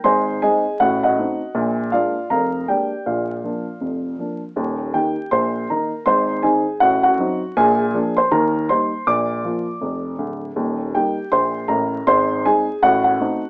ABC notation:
X:1
M:4/4
L:1/8
Q:"Swing" 1/4=160
K:Bbmix
V:1 name="Upright piano"
[cac']2 [Aea]2 [^F^f] [Fef]3 | z2 [Fdf]2 [Bfb]2 [Gdg]2 | [Fdf]6- [Fdf] z | z2 [Gg]2 [cc']2 [Bb]2 |
[cc']2 [Aa]2 [^F^f] [Ff]3 | [Aa]3 [cc'] [Bb]2 [cc']2 | [dd']6- [dd'] z | z2 [Gg]2 [cc']2 [Bb]2 |
[cc']2 [Aa]2 [^F^f] [Ff]3 |]
V:2 name="Upright piano" clef=bass
[A,,,A,,]2 [A,CE]2 [=A,,,=A,,]2 [=A,CE]2 | [B,,,B,,]2 [A,B,D]2 [F,,,F,,]2 [A,B,D]2 | [B,,,B,,]2 [F,B,D]2 [F,,,F,,]2 [F,B,D]2 | [E,,,E,,]2 [E,B,E]2 [B,,,B,,]2 [E,B,E]2 |
[A,,,A,,]2 [E,CE]2 [=A,,,=A,,]2 [^F,CE]2 | [B,,,B,,]2 [F,B,D]2 [E,,E,]2 [G,B,E]2 | [B,,,B,,]2 [F,B,F]2 [F,,,F,,]2 [D,,,D,,]2 | [E,,,E,,]2 [G,B,E]2 [B,,,B,,]2 [=A,,,=A,,]2 |
[A,,,A,,]2 [A,CE]2 [=A,,,=A,,]2 [=A,CE]2 |]